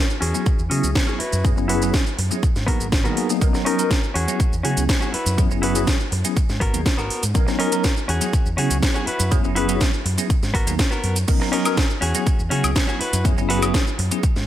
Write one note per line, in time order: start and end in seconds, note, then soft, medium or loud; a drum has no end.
0.10 shaker soft
0.21 0.32 E2 loud
0.21 0.61 C#4 medium
0.21 0.61 F#4 medium
0.21 0.62 G#4 loud
0.21 open hi-hat medium
0.34 0.46 F#3 medium
0.34 0.46 B3 medium
0.34 0.46 C#4 medium
0.34 0.46 E4 medium
0.34 0.47 G#4 medium
0.34 shaker medium
0.46 muted fingered electric bass stroke soft
0.46 kick loud
0.46 shaker medium
0.59 0.69 E2 medium
0.59 shaker soft
0.70 0.81 C#3 medium
0.70 1.19 F#3 medium
0.70 1.19 B3 medium
0.70 0.89 C#4 loud
0.70 1.19 C#4 medium
0.70 1.19 E4 medium
0.70 0.90 F#4 loud
0.70 1.19 G#4 medium
0.70 0.90 G#4 loud
0.70 open hi-hat loud
0.84 0.93 C#2 medium
0.84 shaker medium
0.95 kick loud
0.95 snare loud
0.95 shaker medium
1.07 1.20 C#4 medium
1.07 1.19 F#4 medium
1.07 1.20 G#4 medium
1.07 shaker soft
1.19 1.49 E4 medium
1.19 1.50 F#4 medium
1.19 1.50 B4 loud
1.19 muted fingered electric bass stroke soft
1.19 open hi-hat medium
1.33 1.53 F#2 loud
1.33 shaker medium
1.44 1.54 F#3 loud
1.44 1.54 B3 medium
1.44 1.54 C#4 medium
1.44 1.54 E4 medium
1.44 1.54 G#4 loud
1.44 kick loud
1.44 shaker medium
1.56 1.90 F#1 medium
1.56 1.67 F#3 medium
1.56 1.67 B3 medium
1.56 1.68 C#4 medium
1.56 1.68 E4 medium
1.56 1.68 G#4 medium
1.56 muted clean electric guitar stroke medium
1.56 shaker soft
1.68 1.80 F#3 medium
1.68 1.80 B3 medium
1.68 1.80 C#4 medium
1.68 1.93 E4 loud
1.68 1.80 E4 medium
1.68 1.94 F#4 loud
1.68 1.80 G#4 medium
1.68 1.94 B4 loud
1.68 open hi-hat loud
1.82 2.01 F#3 medium
1.82 2.01 B3 medium
1.82 2.01 C#4 medium
1.82 2.02 E4 medium
1.82 2.02 G#4 medium
1.82 shaker medium
1.94 kick loud
1.94 snare loud
1.94 shaker medium
2.07 shaker soft
2.17 2.29 F#2 loud
2.17 muted clean electric guitar stroke soft
2.17 open hi-hat loud
2.31 2.42 F#3 medium
2.31 2.42 B3 medium
2.31 2.42 C#4 medium
2.31 2.42 E4 medium
2.31 2.42 G#4 medium
2.31 shaker medium
2.43 kick loud
2.43 shaker medium
2.56 2.66 G#2 loud
2.56 snare soft
2.56 shaker soft
2.67 2.87 F#3 medium
2.67 2.87 A#3 medium
2.67 2.86 B3 loud
2.67 2.87 B3 medium
2.67 2.88 D#4 medium
2.67 2.86 F#4 loud
2.67 2.88 G#4 medium
2.67 2.87 A#4 loud
2.67 kick medium
2.67 open hi-hat loud
2.80 3.07 G#1 loud
2.80 shaker medium
2.92 kick loud
2.92 snare loud
2.92 shaker medium
3.04 3.15 D#3 medium
3.04 3.15 F#3 medium
3.04 3.15 A#3 medium
3.04 3.29 B3 medium
3.04 3.15 B3 medium
3.04 3.15 D#4 medium
3.04 3.29 F#4 medium
3.04 3.15 G#4 medium
3.04 3.30 A#4 medium
3.04 shaker soft
3.16 3.26 F#3 medium
3.16 3.26 A#3 medium
3.16 3.26 B3 medium
3.16 3.27 D#4 medium
3.16 3.27 G#4 medium
3.16 open hi-hat medium
3.29 3.38 F#3 medium
3.29 3.39 A#3 medium
3.29 3.39 B3 medium
3.29 3.39 D#4 medium
3.29 3.39 G#4 medium
3.29 shaker medium
3.41 3.52 B1 medium
3.41 3.52 F#3 loud
3.41 3.52 B3 medium
3.41 3.52 C#4 medium
3.41 3.53 D#4 medium
3.41 3.53 A#4 loud
3.41 kick loud
3.41 closed hi-hat medium
3.41 shaker medium
3.53 3.63 F#3 medium
3.53 3.63 B3 medium
3.53 3.63 C#4 medium
3.53 3.63 D#4 medium
3.53 3.64 A#4 medium
3.53 muted clean electric guitar stroke medium
3.53 snare soft
3.53 shaker soft
3.65 3.77 F#3 medium
3.65 3.77 B3 medium
3.65 3.90 C#4 loud
3.65 3.77 C#4 medium
3.65 3.91 D#4 loud
3.65 3.77 D#4 medium
3.65 3.77 A#4 loud
3.65 3.91 A#4 loud
3.65 open hi-hat loud
3.79 3.91 F#3 medium
3.79 3.91 B3 medium
3.79 3.91 C#4 medium
3.79 3.91 D#4 medium
3.79 3.91 A#4 medium
3.79 closed hi-hat medium
3.79 shaker medium
3.91 kick loud
3.91 snare loud
3.91 closed hi-hat soft
3.91 shaker medium
4.04 shaker soft
4.14 4.26 E2 loud
4.14 4.54 C#4 medium
4.14 4.55 F#4 medium
4.14 4.55 G#4 loud
4.14 open hi-hat medium
4.28 4.40 F#3 medium
4.28 4.40 B3 medium
4.28 4.40 C#4 medium
4.28 4.40 E4 medium
4.28 4.40 G#4 medium
4.28 closed hi-hat medium
4.28 shaker medium
4.40 muted fingered electric bass stroke soft
4.40 kick loud
4.40 closed hi-hat soft
4.40 shaker medium
4.53 4.62 E2 medium
4.53 shaker soft
4.63 4.75 C#3 medium
4.63 5.12 F#3 medium
4.63 5.12 B3 medium
4.63 4.83 C#4 loud
4.63 5.12 C#4 medium
4.63 5.13 E4 medium
4.63 4.83 F#4 loud
4.63 4.83 G#4 loud
4.63 5.13 G#4 medium
4.63 open hi-hat loud
4.77 4.87 C#2 medium
4.77 closed hi-hat medium
4.77 shaker medium
4.89 kick loud
4.89 snare loud
4.89 closed hi-hat soft
4.89 shaker medium
5.01 5.12 C#4 medium
5.01 5.12 F#4 medium
5.01 5.14 G#4 medium
5.01 shaker soft
5.12 5.43 E4 medium
5.12 5.43 F#4 medium
5.12 5.44 B4 loud
5.12 muted fingered electric bass stroke soft
5.12 open hi-hat medium
5.26 5.46 F#2 medium
5.26 closed hi-hat medium
5.26 shaker medium
5.38 5.48 F#3 loud
5.38 5.48 B3 medium
5.38 5.48 C#4 medium
5.38 5.48 E4 medium
5.38 5.48 G#4 loud
5.38 kick loud
5.38 closed hi-hat medium
5.38 shaker medium
5.50 5.84 F#1 medium
5.50 5.61 F#3 medium
5.50 5.61 B3 medium
5.50 5.61 C#4 medium
5.50 5.61 E4 medium
5.50 5.61 G#4 medium
5.50 muted clean electric guitar stroke medium
5.50 shaker soft
5.62 5.73 F#3 medium
5.62 5.74 B3 medium
5.62 5.74 C#4 medium
5.62 5.87 E4 loud
5.62 5.74 E4 medium
5.62 5.87 F#4 loud
5.62 5.74 G#4 medium
5.62 5.88 B4 loud
5.62 open hi-hat loud
5.75 5.95 F#3 medium
5.75 5.95 B3 medium
5.75 5.95 C#4 medium
5.75 5.95 E4 medium
5.75 5.95 G#4 medium
5.75 closed hi-hat medium
5.75 shaker medium
5.87 kick loud
5.87 snare loud
5.87 closed hi-hat medium
5.87 shaker medium
6.00 shaker soft
6.11 6.22 F#2 loud
6.11 muted clean electric guitar stroke soft
6.11 open hi-hat medium
6.24 6.35 F#3 medium
6.24 6.35 B3 medium
6.24 6.35 C#4 medium
6.24 6.35 E4 medium
6.24 6.35 G#4 medium
6.24 closed hi-hat medium
6.24 shaker medium
6.37 kick loud
6.37 closed hi-hat medium
6.37 shaker medium
6.49 6.59 G#2 loud
6.49 snare soft
6.49 shaker soft
6.60 6.72 G#1 medium
6.60 6.79 B3 loud
6.60 6.80 F#4 loud
6.60 6.80 A#4 loud
6.60 kick medium
6.60 open hi-hat loud
6.73 6.84 D#2 medium
6.73 6.86 F#3 medium
6.73 6.86 A#3 medium
6.73 6.86 B3 medium
6.73 6.86 D#4 medium
6.73 6.86 G#4 medium
6.73 closed hi-hat medium
6.73 shaker medium
6.86 kick loud
6.86 snare loud
6.86 closed hi-hat medium
6.86 shaker medium
6.97 7.08 G#1 medium
6.97 7.23 B3 medium
6.97 7.23 F#4 medium
6.97 7.23 A#4 medium
6.97 shaker soft
7.10 muted fingered electric bass stroke soft
7.10 open hi-hat medium
7.23 7.33 G#2 medium
7.23 closed hi-hat medium
7.23 shaker medium
7.35 7.45 B1 medium
7.35 7.46 F#3 loud
7.35 7.46 B3 loud
7.35 7.46 C#4 medium
7.35 7.46 D#4 medium
7.35 7.46 A#4 loud
7.35 kick loud
7.35 closed hi-hat medium
7.35 shaker medium
7.47 7.57 F#3 medium
7.47 7.57 B3 medium
7.47 7.57 C#4 medium
7.47 7.57 D#4 medium
7.47 7.57 A#4 medium
7.47 muted clean electric guitar stroke medium
7.47 snare soft
7.47 shaker soft
7.59 7.70 F#3 medium
7.59 7.70 B3 medium
7.59 7.84 C#4 loud
7.59 7.70 C#4 medium
7.59 7.84 D#4 medium
7.59 7.70 D#4 medium
7.59 7.71 A#4 loud
7.59 7.85 A#4 loud
7.59 open hi-hat medium
7.72 7.84 F#3 medium
7.72 7.84 B3 medium
7.72 7.84 C#4 medium
7.72 7.84 D#4 medium
7.72 7.84 A#4 medium
7.72 closed hi-hat medium
7.72 shaker medium
7.84 kick loud
7.84 snare loud
7.84 closed hi-hat medium
7.84 shaker medium
7.97 shaker soft
8.08 8.19 E2 loud
8.08 8.48 C#4 medium
8.08 8.49 F#4 medium
8.08 8.49 G#4 loud
8.08 open hi-hat medium
8.21 8.33 F#3 medium
8.21 8.33 B3 medium
8.21 8.33 C#4 medium
8.21 8.33 E4 medium
8.21 8.33 G#4 medium
8.21 closed hi-hat medium
8.21 shaker medium
8.33 muted fingered electric bass stroke soft
8.33 kick loud
8.33 closed hi-hat medium
8.33 shaker medium
8.46 8.56 E2 medium
8.46 shaker soft
8.57 8.68 C#3 medium
8.57 9.06 F#3 medium
8.57 9.06 B3 medium
8.57 8.76 C#4 loud
8.57 9.06 C#4 medium
8.57 9.06 E4 medium
8.57 8.77 F#4 loud
8.57 9.06 G#4 medium
8.57 8.77 G#4 loud
8.57 open hi-hat loud
8.71 8.80 C#2 medium
8.71 closed hi-hat medium
8.71 shaker medium
8.83 kick loud
8.83 snare loud
8.83 closed hi-hat medium
8.83 shaker medium
8.94 9.06 C#4 medium
8.94 9.06 F#4 medium
8.94 9.08 G#4 medium
8.94 shaker soft
9.06 9.36 E4 medium
9.06 9.37 F#4 medium
9.06 9.37 B4 medium
9.06 muted fingered electric bass stroke soft
9.06 open hi-hat medium
9.20 9.40 F#2 medium
9.20 closed hi-hat medium
9.20 shaker medium
9.31 9.41 F#3 loud
9.31 9.41 B3 loud
9.31 9.41 C#4 medium
9.31 9.41 E4 medium
9.31 9.42 G#4 loud
9.31 kick loud
9.31 closed hi-hat medium
9.31 shaker medium
9.43 9.77 F#1 medium
9.43 9.54 F#3 medium
9.43 9.54 B3 medium
9.43 9.55 C#4 medium
9.43 9.55 E4 medium
9.43 9.55 G#4 medium
9.43 muted clean electric guitar stroke medium
9.43 shaker soft
9.55 9.67 F#3 medium
9.55 9.67 B3 medium
9.55 9.67 C#4 medium
9.55 9.80 E4 loud
9.55 9.67 E4 medium
9.55 9.81 F#4 loud
9.55 9.67 G#4 medium
9.55 9.81 B4 loud
9.55 open hi-hat loud
9.69 9.88 F#3 medium
9.69 9.88 B3 medium
9.69 9.88 C#4 medium
9.69 9.88 E4 medium
9.69 9.89 G#4 medium
9.69 closed hi-hat medium
9.69 shaker medium
9.81 kick loud
9.81 snare loud
9.81 closed hi-hat medium
9.81 shaker medium
9.94 shaker soft
10.04 10.16 F#2 loud
10.04 muted clean electric guitar stroke soft
10.04 open hi-hat medium
10.18 10.28 F#3 medium
10.18 10.28 B3 medium
10.18 10.29 C#4 medium
10.18 10.29 E4 medium
10.18 10.29 G#4 medium
10.18 closed hi-hat medium
10.18 shaker medium
10.30 kick loud
10.30 closed hi-hat medium
10.30 shaker medium
10.42 10.52 G#2 loud
10.42 snare soft
10.42 shaker soft
10.54 10.65 G#1 medium
10.54 10.73 B3 loud
10.54 10.73 F#4 loud
10.54 10.74 A#4 loud
10.54 kick medium
10.54 open hi-hat loud
10.67 10.77 D#2 medium
10.67 10.79 F#3 medium
10.67 10.79 A#3 medium
10.67 10.79 B3 medium
10.67 10.79 D#4 medium
10.67 10.79 G#4 medium
10.67 closed hi-hat medium
10.67 shaker medium
10.79 kick loud
10.79 snare loud
10.79 closed hi-hat medium
10.79 shaker medium
10.91 11.16 B3 medium
10.91 11.16 F#4 medium
10.91 11.17 A#4 medium
10.91 shaker soft
11.04 11.24 F#2 medium
11.04 open hi-hat medium
11.16 closed hi-hat medium
11.16 shaker medium
11.28 11.39 B1 medium
11.28 11.39 F#3 loud
11.28 11.39 B3 medium
11.28 11.39 C#4 medium
11.28 11.39 D#4 medium
11.28 11.39 A#4 loud
11.28 kick loud
11.28 closed hi-hat medium
11.28 crash medium
11.28 shaker medium
11.40 11.50 F#3 medium
11.40 11.50 B3 medium
11.40 11.50 C#4 medium
11.40 11.50 D#4 medium
11.40 11.50 A#4 medium
11.40 muted clean electric guitar stroke medium
11.40 snare soft
11.40 shaker soft
11.52 11.64 F#3 medium
11.52 11.64 B3 medium
11.52 11.77 C#4 loud
11.52 11.64 C#4 medium
11.52 11.77 D#4 loud
11.52 11.64 D#4 medium
11.52 11.64 A#4 loud
11.52 11.78 A#4 loud
11.52 open hi-hat loud
11.65 11.77 F#3 medium
11.65 11.78 B3 medium
11.65 11.78 C#4 medium
11.65 11.78 D#4 medium
11.65 11.78 A#4 medium
11.65 closed hi-hat medium
11.65 high woodblock medium
11.65 shaker medium
11.77 kick loud
11.77 snare loud
11.77 closed hi-hat medium
11.77 shaker medium
11.90 shaker soft
12.01 12.12 E2 loud
12.01 12.41 C#4 medium
12.01 12.42 F#4 medium
12.01 12.42 G#4 loud
12.01 open hi-hat medium
12.15 12.27 F#3 medium
12.15 12.27 B3 medium
12.15 12.27 C#4 medium
12.15 12.27 E4 medium
12.15 12.27 G#4 medium
12.15 closed hi-hat medium
12.15 shaker medium
12.27 muted fingered electric bass stroke soft
12.27 kick loud
12.27 closed hi-hat medium
12.27 shaker medium
12.39 12.49 E2 medium
12.39 shaker soft
12.50 12.62 C#3 medium
12.50 12.99 F#3 medium
12.50 12.99 B3 medium
12.50 12.69 C#4 loud
12.50 12.99 C#4 medium
12.50 12.99 E4 medium
12.50 12.70 F#4 loud
12.50 12.99 G#4 medium
12.50 12.70 G#4 loud
12.50 open hi-hat loud
12.64 12.74 C#2 medium
12.64 closed hi-hat medium
12.64 high woodblock medium
12.64 shaker medium
12.76 kick loud
12.76 snare loud
12.76 closed hi-hat medium
12.76 shaker medium
12.88 12.99 C#4 medium
12.88 12.99 F#4 medium
12.88 13.01 G#4 medium
12.88 shaker soft
12.99 13.30 E4 medium
12.99 13.30 F#4 medium
12.99 13.31 B4 loud
12.99 muted fingered electric bass stroke soft
12.99 open hi-hat medium
13.13 13.33 F#2 medium
13.13 closed hi-hat medium
13.13 shaker medium
13.25 13.35 F#3 loud
13.25 13.35 B3 medium
13.25 13.35 C#4 medium
13.25 13.35 E4 loud
13.25 13.35 G#4 loud
13.25 kick loud
13.25 closed hi-hat medium
13.25 shaker medium
13.37 13.71 F#1 medium
13.37 13.48 F#3 medium
13.37 13.48 B3 medium
13.37 13.48 C#4 medium
13.37 13.48 E4 medium
13.37 13.48 G#4 medium
13.37 muted clean electric guitar stroke medium
13.37 shaker soft
13.49 13.60 F#3 medium
13.49 13.60 B3 medium
13.49 13.61 C#4 medium
13.49 13.74 E4 loud
13.49 13.61 E4 medium
13.49 13.74 F#4 loud
13.49 13.61 G#4 medium
13.49 13.75 B4 loud
13.49 open hi-hat loud
13.62 13.82 F#3 medium
13.62 13.82 B3 medium
13.62 13.82 C#4 medium
13.62 13.82 E4 medium
13.62 13.82 G#4 medium
13.62 closed hi-hat medium
13.62 high woodblock medium
13.62 shaker medium
13.74 kick loud
13.74 snare loud
13.74 closed hi-hat medium
13.74 shaker medium
13.87 shaker soft
13.98 14.09 F#2 loud
13.98 muted clean electric guitar stroke soft
13.98 open hi-hat medium
14.11 14.22 F#3 medium
14.11 14.22 B3 medium
14.11 14.22 C#4 medium
14.11 14.22 E4 medium
14.11 14.22 G#4 medium
14.11 closed hi-hat medium
14.11 shaker medium
14.23 kick loud
14.23 closed hi-hat medium
14.23 shaker medium
14.36 14.46 G#2 loud
14.36 snare soft
14.36 shaker soft